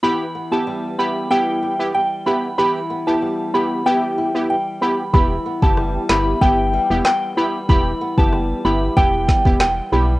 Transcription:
<<
  \new Staff \with { instrumentName = "Synth bell" } { \time 4/4 \key e \minor \tempo 4 = 94 b''16 r8 a''8 r16 b''8 g''8. r16 g''16 r16 b''16 r16 | b''16 r8 a''8 r16 b''8 g''8. r16 g''16 r16 b''16 r16 | b''16 r8 a''8 r16 b''8 g''8. r16 g''16 r16 b''16 r16 | b''16 r8 a''8 r16 b''8 g''8. r16 g''16 r16 b''16 r16 | }
  \new Staff \with { instrumentName = "Synth stab" } { \time 4/4 \key e \minor <b e' g'>16 r8 <b e' g'>8. <b e' g'>8 <b e' g'>8. <b e' g'>16 r8 <b e' g'>16 r16 | <b e' g'>16 r8 <b e' g'>8. <b e' g'>8 <b e' g'>8. <b e' g'>16 r8 <b e' g'>16 r16 | <b e' g'>16 r8 <b e' g'>8. <b e' g'>8 <b e' g'>8. <b e' g'>16 r8 <b e' g'>16 r16 | <b e' g'>16 r8 <b e' g'>8. <b e' g'>8 <b e' g'>8. <b e' g'>16 r8 <b e' g'>16 r16 | }
  \new Staff \with { instrumentName = "Nylon-string guitar" } { \time 4/4 \key e \minor e8 b8 g8 b8 g8 e'8 g8 b8 | e8 b8 g8 b8 g8 e'8 g8 b8 | e8 b8 g8 e'8 b8 g8 b8 g8 | e8 b8 g8 e'8 b8 g8 b8 g8 | }
  \new Staff \with { instrumentName = "FM bass" } { \clef bass \time 4/4 \key e \minor r1 | r1 | e,,8 r16 fis,,8. g,,8 g,,8. e,,16 r4 | e,,8 r16 fis,,8. g,,8 e,,8. e,,8. b,,8 | }
  \new DrumStaff \with { instrumentName = "Drums" } \drummode { \time 4/4 r4 r4 r4 r4 | r4 r4 r4 r4 | bd8. bd16 ss8 <hc sn>8 bd4 <hc ss sn>4 | bd8. bd16 ss4 bd8 <bd sn>16 bd16 <hc ss sn>4 | }
>>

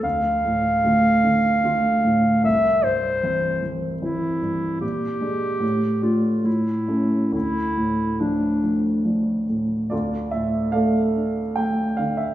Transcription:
<<
  \new Staff \with { instrumentName = "Clarinet" } { \time 3/4 \key d \minor \tempo 4 = 73 f''2. | e''8 c''4 r8 e'4 | g'4. f'8 e'4 | e'4 d'4 r4 |
r2. | }
  \new Staff \with { instrumentName = "Grand piano" } { \time 3/4 \key d \minor r2. | r2. | r2. | r2. |
<f' a' d''>8 e''8 <a' d'' f''>4 g''8 f''16 e''16 | }
  \new Staff \with { instrumentName = "Grand piano" } { \clef bass \time 3/4 \key d \minor d,8 a,8 <d a f'>8 d8 <d a f'>8 a,8 | c,8 g,8 <e c' e'>8 e8 <e c' e'>8 g,8 | bes,8 <aes d'>8 a,8 <a d'>8 a,8 <a cis'>8 | d,8 a,8 <f a d'>8 f8 <f a d'>8 a,8 |
d,8 a,8 a8 d'8 a8 d8 | }
>>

